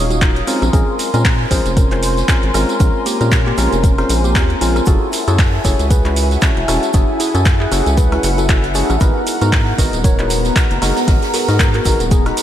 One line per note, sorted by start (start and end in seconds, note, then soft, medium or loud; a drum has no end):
0.00 0.42 D#1 loud
0.00 0.19 F#3 medium
0.00 0.47 F#3 medium
0.00 0.19 C#4 medium
0.00 0.19 D#4 medium
0.00 0.19 F4 medium
0.00 0.19 C#5 medium
0.00 0.43 C#5 medium
0.00 1.23 D#5 medium
0.00 0.44 F5 medium
0.00 0.44 D#6 medium
0.10 0.39 D#4 medium
0.10 0.39 F#4 medium
0.10 closed hi-hat soft
0.10 tambourine soft
0.21 0.45 F#3 medium
0.21 0.45 C#4 medium
0.21 0.45 D#4 medium
0.21 0.45 F4 medium
0.21 0.45 A#4 medium
0.21 kick loud
0.21 clap loud
0.21 closed hi-hat medium
0.21 shaker medium
0.36 snare soft
0.36 closed hi-hat soft
0.47 0.71 G#3 medium
0.47 0.71 C4 medium
0.47 0.67 C4 medium
0.47 0.71 C#4 medium
0.47 0.67 D#4 medium
0.47 0.71 F4 medium
0.47 0.71 A#4 loud
0.47 4.83 A#4 medium
0.47 4.83 G#5 medium
0.47 4.83 C6 medium
0.47 open hi-hat medium
0.47 tambourine medium
0.47 shaker medium
0.62 0.70 A#1 loud
0.62 cross-stick medium
0.62 closed hi-hat soft
0.62 tambourine soft
0.73 0.84 A#1 loud
0.73 1.10 G#3 medium
0.73 1.10 C4 medium
0.73 1.10 C#4 medium
0.73 1.10 F4 medium
0.73 0.93 F4 medium
0.73 0.93 G#4 loud
0.73 1.10 A#4 loud
0.73 kick loud
0.73 closed hi-hat medium
0.73 tambourine soft
0.73 shaker medium
0.88 4.87 A#4 medium
0.99 open hi-hat loud
0.99 tambourine medium
0.99 shaker medium
1.14 1.46 A#2 medium
1.14 1.48 G#3 medium
1.14 1.48 C4 medium
1.14 1.48 C#4 medium
1.14 1.48 F4 medium
1.14 1.48 A#4 loud
1.14 closed hi-hat medium
1.14 tambourine soft
1.25 kick loud
1.25 snare loud
1.25 clap loud
1.25 closed hi-hat medium
1.25 open hi-hat medium
1.25 tambourine soft
1.41 4.87 C6 medium
1.51 1.61 A#1 loud
1.51 1.88 G#3 loud
1.51 1.88 C4 medium
1.51 1.88 C#4 medium
1.51 1.88 F4 medium
1.51 1.71 G#4 medium
1.51 1.88 A#4 loud
1.51 1.71 C5 medium
1.51 kick medium
1.51 open hi-hat medium
1.51 tambourine medium
1.51 shaker medium
1.66 2.23 F1 medium
1.66 closed hi-hat soft
1.66 tambourine soft
1.77 2.17 C#4 medium
1.77 2.17 A#4 medium
1.77 kick loud
1.77 closed hi-hat medium
1.77 tambourine soft
1.77 shaker medium
1.91 2.26 G#3 medium
1.91 2.26 C4 medium
1.91 2.26 C#4 medium
1.91 2.26 F4 medium
1.91 2.26 C5 medium
1.91 clap soft
1.91 closed hi-hat soft
2.03 open hi-hat loud
2.03 tambourine medium
2.03 shaker medium
2.17 snare soft
2.17 closed hi-hat soft
2.17 tambourine soft
2.28 2.52 G#3 medium
2.28 2.52 C4 medium
2.28 2.52 C#4 medium
2.28 2.52 F4 medium
2.28 2.52 A#4 medium
2.28 kick loud
2.28 snare loud
2.28 clap loud
2.28 closed hi-hat medium
2.28 tambourine soft
2.28 shaker medium
2.43 2.51 G#1 medium
2.43 closed hi-hat soft
2.54 2.65 G#1 loud
2.54 2.77 G#3 medium
2.54 2.77 C4 medium
2.54 2.77 C#4 medium
2.54 2.78 F4 medium
2.54 2.77 A#4 loud
2.54 cross-stick medium
2.54 snare medium
2.54 open hi-hat medium
2.54 tambourine medium
2.54 shaker medium
2.69 closed hi-hat soft
2.69 tambourine soft
2.80 2.91 A#1 loud
2.80 3.17 G#3 loud
2.80 3.17 C4 medium
2.80 3.17 C#4 medium
2.80 3.17 F4 medium
2.80 3.17 A#4 loud
2.80 kick loud
2.80 closed hi-hat medium
2.80 tambourine soft
2.80 shaker medium
3.06 3.35 A#3 medium
3.06 3.35 G4 loud
3.06 open hi-hat loud
3.06 tambourine medium
3.06 shaker medium
3.21 3.53 A#2 medium
3.21 3.55 G#3 medium
3.21 3.55 C4 medium
3.21 3.55 C#4 medium
3.21 3.55 F4 medium
3.21 3.55 A#4 loud
3.21 closed hi-hat medium
3.21 tambourine soft
3.32 kick loud
3.32 snare loud
3.32 clap loud
3.32 closed hi-hat medium
3.32 tambourine soft
3.32 shaker medium
3.47 3.75 A#3 medium
3.47 3.75 G4 medium
3.47 clap soft
3.57 3.68 A#1 loud
3.57 3.95 G#3 loud
3.57 3.95 C4 medium
3.57 3.95 C#4 medium
3.57 3.95 F4 medium
3.57 3.95 A#4 loud
3.57 cross-stick medium
3.57 open hi-hat loud
3.57 tambourine medium
3.57 shaker medium
3.73 4.04 F1 medium
3.73 closed hi-hat soft
3.73 tambourine soft
3.84 4.13 C#4 medium
3.84 4.13 A#4 medium
3.84 kick loud
3.84 closed hi-hat medium
3.84 tambourine soft
3.84 shaker medium
3.98 4.33 G#3 medium
3.98 4.33 C4 medium
3.98 4.33 C#4 medium
3.98 4.33 F4 medium
3.98 4.33 C5 medium
3.98 cross-stick medium
3.98 snare soft
3.98 closed hi-hat soft
4.09 4.35 A#1 loud
4.09 open hi-hat loud
4.09 tambourine medium
4.09 shaker medium
4.24 4.52 A#3 medium
4.24 4.52 G4 loud
4.24 closed hi-hat soft
4.24 tambourine soft
4.35 4.55 D#2 medium
4.35 4.58 G#3 medium
4.35 4.58 C4 medium
4.35 4.59 C#4 medium
4.35 4.59 F4 medium
4.35 4.59 A#4 medium
4.35 kick loud
4.35 snare loud
4.35 clap loud
4.35 closed hi-hat medium
4.35 tambourine soft
4.35 shaker medium
4.50 closed hi-hat soft
4.61 4.81 A#1 medium
4.61 4.84 G#3 medium
4.61 4.84 C4 medium
4.61 4.84 C#4 medium
4.61 4.81 C#4 medium
4.61 4.84 F4 medium
4.61 4.81 F4 medium
4.61 4.84 A#4 loud
4.61 open hi-hat loud
4.61 tambourine medium
4.61 shaker medium
4.76 cross-stick medium
4.76 closed hi-hat soft
4.76 tambourine soft
4.86 4.98 F#1 loud
4.86 5.24 C#4 medium
4.86 5.24 E4 medium
4.86 9.01 E4 loud
4.86 5.24 F#4 medium
4.86 5.07 F#4 medium
4.86 5.24 G#4 medium
4.86 5.24 A4 loud
4.86 5.07 A4 loud
4.86 8.97 E5 medium
4.86 12.43 F#5 medium
4.86 8.97 G#5 medium
4.86 kick loud
4.86 closed hi-hat medium
4.86 tambourine soft
4.86 shaker medium
5.12 open hi-hat loud
5.12 tambourine medium
5.12 shaker medium
5.22 12.43 F#5 medium
5.28 5.60 F#2 medium
5.28 5.62 C#4 medium
5.28 5.62 E4 medium
5.28 5.62 F#4 medium
5.28 5.62 G#4 medium
5.28 5.62 A4 loud
5.28 closed hi-hat medium
5.28 tambourine soft
5.39 kick loud
5.39 snare loud
5.39 clap loud
5.39 closed hi-hat medium
5.39 open hi-hat medium
5.39 tambourine soft
5.64 5.75 F#1 loud
5.64 6.02 C#4 medium
5.64 6.02 E4 medium
5.64 6.02 F#4 medium
5.64 6.02 G#4 loud
5.64 6.02 A4 loud
5.64 5.85 A4 medium
5.64 5.85 C#5 medium
5.64 kick medium
5.64 open hi-hat medium
5.64 tambourine medium
5.64 shaker medium
5.79 6.37 C#2 medium
5.79 closed hi-hat soft
5.79 tambourine soft
5.91 6.30 G#4 medium
5.91 6.30 B4 medium
5.91 kick loud
5.91 closed hi-hat medium
5.91 tambourine soft
5.91 shaker medium
6.05 6.40 G#3 medium
6.05 6.40 C#4 medium
6.05 6.40 E4 medium
6.05 6.40 F#4 medium
6.05 6.40 B4 medium
6.05 clap soft
6.05 closed hi-hat soft
6.16 open hi-hat loud
6.16 tambourine medium
6.16 shaker medium
6.31 snare soft
6.31 closed hi-hat soft
6.31 tambourine soft
6.42 6.65 G#3 medium
6.42 6.65 C#4 medium
6.42 6.65 E4 medium
6.42 6.65 F#4 medium
6.42 6.65 A4 medium
6.42 kick loud
6.42 snare loud
6.42 clap loud
6.42 closed hi-hat medium
6.42 tambourine soft
6.42 shaker medium
6.57 6.65 E1 medium
6.57 closed hi-hat soft
6.68 6.79 E1 loud
6.68 6.91 G#3 medium
6.68 6.91 C#4 medium
6.68 6.91 E4 medium
6.68 6.91 F#4 medium
6.68 6.91 A4 loud
6.68 cross-stick medium
6.68 snare soft
6.68 open hi-hat medium
6.68 tambourine medium
6.68 shaker medium
6.83 closed hi-hat soft
6.83 tambourine soft
6.93 7.05 F#1 loud
6.93 7.31 C#4 medium
6.93 7.31 E4 medium
6.93 7.31 F#4 medium
6.93 7.31 G#4 loud
6.93 7.31 A4 loud
6.93 kick loud
6.93 closed hi-hat medium
6.93 tambourine soft
6.93 shaker loud
7.20 7.49 E4 medium
7.20 7.49 G#4 loud
7.20 open hi-hat loud
7.20 tambourine medium
7.20 shaker medium
7.34 7.66 F#2 medium
7.34 7.69 C#4 medium
7.34 7.69 E4 medium
7.34 7.69 F#4 medium
7.34 7.69 G#4 medium
7.34 7.69 A4 loud
7.34 closed hi-hat medium
7.34 tambourine soft
7.45 kick loud
7.45 snare loud
7.45 clap loud
7.45 closed hi-hat medium
7.45 tambourine soft
7.45 shaker medium
7.60 7.89 E4 medium
7.60 7.89 G#4 loud
7.60 clap soft
7.72 7.82 F#1 loud
7.72 8.09 C#4 medium
7.72 8.09 E4 medium
7.72 8.09 F#4 medium
7.72 8.09 G#4 loud
7.72 8.09 A4 loud
7.72 cross-stick medium
7.72 open hi-hat medium
7.72 tambourine medium
7.72 shaker medium
7.86 8.18 C#2 medium
7.86 closed hi-hat medium
7.86 closed hi-hat soft
7.86 tambourine soft
7.97 8.26 G#4 medium
7.97 8.26 B4 medium
7.97 kick loud
7.97 closed hi-hat medium
7.97 tambourine soft
7.97 shaker loud
8.12 8.46 G#3 medium
8.12 8.46 C#4 medium
8.12 8.46 E4 medium
8.12 8.46 F#4 medium
8.12 8.46 B4 medium
8.12 cross-stick medium
8.12 snare soft
8.12 closed hi-hat soft
8.23 8.83 F#1 loud
8.23 open hi-hat loud
8.23 tambourine medium
8.23 shaker medium
8.38 8.66 F#4 medium
8.38 8.66 A4 loud
8.38 closed hi-hat soft
8.38 tambourine soft
8.49 8.72 G#3 medium
8.49 8.72 C#4 medium
8.49 8.72 E4 medium
8.49 8.72 F#4 medium
8.49 8.72 A4 medium
8.49 kick loud
8.49 clap loud
8.49 closed hi-hat medium
8.49 tambourine soft
8.49 shaker medium
8.63 snare soft
8.63 closed hi-hat soft
8.74 8.98 G#3 medium
8.74 8.98 C#4 medium
8.74 8.98 E4 medium
8.74 8.95 E4 medium
8.74 8.98 F#4 medium
8.74 8.95 G#4 medium
8.74 8.98 A4 loud
8.74 open hi-hat medium
8.74 tambourine medium
8.74 shaker medium
8.90 8.98 A1 loud
8.90 cross-stick medium
8.90 closed hi-hat soft
8.90 tambourine soft
9.00 9.11 G#1 loud
9.00 9.38 G#3 loud
9.00 9.38 B3 medium
9.00 12.43 B3 medium
9.00 9.38 D#4 medium
9.00 9.38 F#4 medium
9.00 9.21 G#4 medium
9.00 9.38 A#4 loud
9.00 9.21 B4 loud
9.00 12.43 A#5 medium
9.00 kick loud
9.00 closed hi-hat medium
9.00 tambourine soft
9.00 shaker medium
9.17 12.43 G#4 loud
9.27 open hi-hat loud
9.27 tambourine medium
9.27 shaker medium
9.41 9.73 G#2 medium
9.41 9.76 G#3 medium
9.41 9.76 B3 medium
9.41 9.76 D#4 medium
9.41 9.76 F#4 medium
9.41 9.76 A#4 loud
9.41 closed hi-hat medium
9.41 tambourine soft
9.52 kick loud
9.52 snare loud
9.52 clap loud
9.52 closed hi-hat medium
9.52 open hi-hat medium
9.52 tambourine soft
9.78 9.89 G#1 loud
9.78 10.16 G#3 loud
9.78 10.16 B3 medium
9.78 10.16 D#4 medium
9.78 10.16 F#4 medium
9.78 10.16 A#4 loud
9.78 9.98 B4 medium
9.78 9.98 D#5 medium
9.78 12.43 A#5 medium
9.78 kick medium
9.78 open hi-hat medium
9.78 tambourine medium
9.78 shaker medium
9.93 10.51 D#1 medium
9.93 closed hi-hat medium
9.93 tambourine soft
10.04 10.44 A#4 medium
10.04 10.44 C#5 medium
10.04 kick loud
10.04 closed hi-hat medium
10.04 tambourine soft
10.04 shaker medium
10.19 10.53 G#3 medium
10.19 10.53 B3 medium
10.19 10.53 D#4 medium
10.19 10.53 F#4 medium
10.19 10.53 B4 medium
10.19 clap soft
10.19 closed hi-hat soft
10.30 open hi-hat loud
10.30 tambourine medium
10.30 shaker medium
10.45 snare soft
10.45 closed hi-hat soft
10.45 tambourine soft
10.56 10.79 G#3 medium
10.56 10.79 B3 medium
10.56 10.79 D#4 medium
10.56 10.79 F#4 medium
10.56 10.79 A#4 medium
10.56 kick loud
10.56 snare loud
10.56 clap loud
10.56 closed hi-hat medium
10.56 tambourine soft
10.56 shaker medium
10.71 10.79 F#1 medium
10.71 closed hi-hat soft
10.81 10.92 F#1 loud
10.81 11.05 G#3 medium
10.81 11.05 B3 medium
10.81 11.05 D#4 medium
10.81 11.05 F#4 medium
10.81 11.05 A#4 loud
10.81 cross-stick medium
10.81 snare loud
10.81 open hi-hat medium
10.81 tambourine medium
10.96 snare loud
10.96 closed hi-hat soft
10.96 open hi-hat medium
10.96 tambourine soft
11.08 11.18 G#1 loud
11.08 11.45 G#3 loud
11.08 11.45 B3 medium
11.08 11.45 D#4 medium
11.08 11.45 F#4 medium
11.08 11.45 A#4 loud
11.08 kick loud
11.08 snare loud
11.08 closed hi-hat medium
11.08 open hi-hat medium
11.08 tambourine soft
11.22 snare loud
11.22 closed hi-hat soft
11.22 open hi-hat medium
11.34 11.63 F#4 medium
11.34 11.63 A#4 loud
11.34 snare loud
11.34 open hi-hat loud
11.34 open hi-hat medium
11.34 tambourine medium
11.48 11.80 G#2 medium
11.48 11.83 G#3 medium
11.48 11.83 B3 medium
11.48 11.83 D#4 medium
11.48 11.83 F#4 medium
11.48 11.83 A#4 loud
11.48 snare loud
11.48 closed hi-hat medium
11.48 open hi-hat medium
11.48 tambourine soft
11.59 kick loud
11.59 snare loud
11.59 clap loud
11.59 closed hi-hat medium
11.59 tambourine soft
11.59 shaker medium
11.74 12.02 F#4 medium
11.74 12.02 A#4 medium
11.74 clap soft
11.74 closed hi-hat soft
11.85 11.96 G#1 loud
11.85 12.22 G#3 loud
11.85 12.22 B3 medium
11.85 12.22 D#4 medium
11.85 12.22 F#4 medium
11.85 12.22 A#4 loud
11.85 kick medium
11.85 cross-stick medium
11.85 open hi-hat medium
11.85 tambourine medium
11.85 shaker medium
12.00 12.32 D#1 medium
12.00 closed hi-hat soft
12.00 closed hi-hat medium
12.00 tambourine soft
12.11 12.40 B3 medium
12.11 12.40 G#4 medium
12.11 kick loud
12.11 closed hi-hat medium
12.11 tambourine soft
12.11 shaker medium
12.26 12.43 G#3 medium
12.26 12.43 B3 medium
12.26 12.43 D#4 medium
12.26 12.43 F#4 medium
12.26 12.43 B4 medium
12.26 cross-stick medium
12.26 snare soft
12.26 closed hi-hat soft
12.37 open hi-hat loud
12.37 tambourine medium
12.37 shaker medium